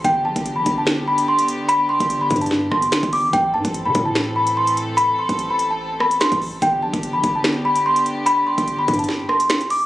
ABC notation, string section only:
X:1
M:4/4
L:1/8
Q:1/4=146
K:Gmix
V:1 name="String section"
[D,B,G]8- | [D,B,G]8 | [E,CA]8- | [E,CA]8 |
[D,B,G]8- | [D,B,G]8 |]